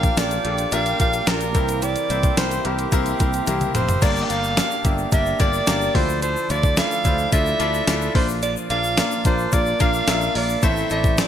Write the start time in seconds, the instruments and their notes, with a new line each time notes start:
Already playing: grand piano A#2 D4 F4 G4 A#4, clean electric guitar F3 A#3 D4 G4, ambient pad A#4 F5 G5 D6, soprano saxophone F5
0.03 kick, closed hi-hat, shaker
0.17 fretless electric bass A#1, grand piano D4 F4 G4 A#4, clean electric guitar D4, soprano saxophone D5, snare, closed hi-hat, tambourine, shaker
0.31 closed hi-hat, shaker
0.44 fretless electric bass A#1, grand piano D4 F4 G4 A4, clean electric guitar G4, closed hi-hat
0.58 closed hi-hat, shaker
0.72 fretless electric bass A#1, clean electric guitar A#3, grand piano D4 F4 G4 A#4, soprano saxophone F5, closed hi-hat, shaker
0.86 closed hi-hat, shaker
0.99 fretless electric bass A#1, grand piano D4 F4 G4 A#4, clean electric guitar D4, soprano saxophone F5, kick, closed hi-hat, shaker
1.13 closed hi-hat, shaker
1.27 fretless electric bass A#1, clean electric guitar A#3, grand piano D4 F4 G4 A#4, soprano saxophone A#4, snare, closed hi-hat, tambourine, shaker
1.41 closed hi-hat, shaker
1.54 fretless electric bass C2, grand piano C3 C4 E4 G4 A#4, clean electric guitar E3, ambient pad E5 C6, kick, closed hi-hat, shaker
1.69 closed hi-hat, shaker
1.82 clean electric guitar E3 G4, soprano saxophone D5, closed hi-hat, shaker
1.96 closed hi-hat, shaker
2.09 fretless electric bass C2, clean electric guitar A#3, grand piano C4 E4 G4 C5, closed hi-hat, shaker
2.23 kick, closed hi-hat, shaker
2.37 fretless electric bass C2, grand piano C4 E4 G4 A#4, clean electric guitar C4, soprano saxophone C5, snare, closed hi-hat, tambourine, shaker
2.51 closed hi-hat, shaker
2.64 fretless electric bass C2, grand piano C4 E4 G4 A#4, clean electric guitar G4, soprano saxophone G4, closed hi-hat
2.79 closed hi-hat, shaker
2.92 fretless electric bass C2, clean electric guitar A#3, grand piano C4 E4 G4 A#4, kick, closed hi-hat, shaker
3.06 closed hi-hat, shaker
3.20 fretless electric bass C2, grand piano C4 E4 G4 A#4, clean electric guitar C4, kick, closed hi-hat, shaker
3.33 closed hi-hat, shaker
3.47 fretless electric bass C2, clean electric guitar A#3, grand piano C4 E4 G4 A#4, closed hi-hat, high tom, shaker
3.61 closed hi-hat, mid tom, shaker
3.74 fretless electric bass F1, grand piano C4 E4 G4 A#4, clean electric guitar C4, soprano saxophone C5, closed hi-hat, mid tom, shaker
3.89 closed hi-hat, floor tom, shaker
4.02 fretless electric bass G1, grand piano G2 A#3 D4 G4 A#4 D5, clean electric guitar A#3, soprano saxophone D5, kick, closed hi-hat, crash, shaker
4.16 shaker
4.24 soprano saxophone G5
4.29 fretless electric bass G1, grand piano A#3 D4 G4 A#4 D5, clean electric guitar A#3, soprano saxophone F5, closed hi-hat, shaker
4.44 shaker
4.57 grand piano A#3 D4 G4 A#4 F5, clean electric guitar D4, snare, closed hi-hat, tambourine, shaker
4.71 shaker
4.84 fretless electric bass G1, grand piano A#3 D4 G4 A#4 E5, clean electric guitar G4, kick, closed hi-hat, shaker
4.98 shaker
5.12 fretless electric bass G1, grand piano A#3 D4 G4 A#4 D5, clean electric guitar D4, soprano saxophone E5, kick, closed hi-hat, shaker
5.26 shaker
5.39 fretless electric bass G1, grand piano A#3 D4 G4 A#4 D5, clean electric guitar G4, soprano saxophone D5, kick, closed hi-hat, shaker
5.53 shaker
5.67 fretless electric bass G1, grand piano A#3 D4 G4 A#4 D5, clean electric guitar D4, snare, closed hi-hat, tambourine, shaker
5.81 shaker
5.94 fretless electric bass D2, grand piano D3 D4 E4 F4 A4 D5, clean electric guitar F3, soprano saxophone C5, kick, open hi-hat
6.09 shaker
6.22 clean electric guitar F3, soprano saxophone C5, closed hi-hat, shaker
6.37 shaker
6.50 fretless electric bass D2, clean electric guitar F3, grand piano D4 E4 F4 A4 D5, soprano saxophone D5, closed hi-hat, shaker
6.63 kick, shaker
6.77 clean electric guitar A3, grand piano D4 E4 F4 A4 D5, soprano saxophone F5, snare, closed hi-hat, tambourine, shaker
6.91 shaker
7.04 fretless electric bass D2, grand piano D4 E4 F4 A4 C5, clean electric guitar E4, kick, closed hi-hat, shaker
7.18 shaker
7.32 fretless electric bass D2, clean electric guitar A3, grand piano D4 E4 F4 A4 D5, soprano saxophone E5, kick, closed hi-hat, shaker
7.46 shaker
7.59 fretless electric bass D2, grand piano D4 E4 F4 A4 D5, clean electric guitar E4, closed hi-hat, shaker
7.74 shaker
7.87 fretless electric bass D2, clean electric guitar A3, grand piano D4 E4 F4 A4 D5, snare, closed hi-hat, tambourine, shaker
8.01 shaker
8.15 fretless electric bass A#1, grand piano A#2 A#3 D4 F4 A#4 D5, clean electric guitar F3, soprano saxophone C5, kick, open hi-hat
8.29 shaker
8.42 clean electric guitar F3, soprano saxophone D5, closed hi-hat, shaker
8.56 shaker
8.70 fretless electric bass A#1, clean electric guitar F3, grand piano A#3 D4 F4 A#4 D5, soprano saxophone F5, closed hi-hat, shaker
8.84 shaker
8.97 grand piano A#3 D4 F4 A#4 D5, clean electric guitar A#3, snare, closed hi-hat, tambourine, shaker
9.11 shaker
9.25 fretless electric bass A#1, grand piano A#3 D4 F4 A#4 D5, clean electric guitar D4, soprano saxophone C5, kick, closed hi-hat, shaker
9.39 shaker
9.52 fretless electric bass A#1, grand piano A#3 D4 F4 A#4 D5, clean electric guitar A#3, soprano saxophone D5, kick, closed hi-hat, shaker
9.66 shaker
9.80 fretless electric bass A#1, grand piano A#3 D4 F4 A#4 F5, clean electric guitar D4, soprano saxophone F5, kick, closed hi-hat, shaker
9.94 shaker
10.07 fretless electric bass A#1, grand piano A#3 D4 F4 A#4 E5, clean electric guitar A#3, snare, closed hi-hat, tambourine, shaker
10.21 shaker
10.35 fretless electric bass A#1, grand piano A#3 D4 F4 A#4 D5, clean electric guitar D4, soprano saxophone D5, open hi-hat
10.49 shaker
10.62 fretless electric bass A1, grand piano A2 A3 C4 E4 A4 C5, clean electric guitar E3, soprano saxophone E5, kick, closed hi-hat, shaker
10.76 shaker
10.90 fretless electric bass A1, clean electric guitar E3, grand piano A3 C4 E4 A4 D5, soprano saxophone E5, closed hi-hat, shaker
11.04 kick, shaker
11.18 grand piano A3 C4 E4 A4 C5, clean electric guitar C4, soprano saxophone D5, snare, closed hi-hat, tambourine, shaker